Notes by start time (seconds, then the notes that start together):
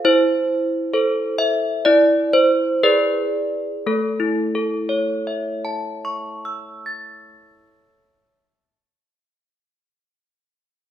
0.05 E4 C5
0.93 A4 C5
1.38 E5
1.85 E4 D5
2.33 C5
2.83 G#4 B4 D5
3.86 A3 A4
4.20 E4
4.55 A4
4.89 C#5
5.27 E5
5.65 A5
6.05 C#6
6.45 E6
6.86 A6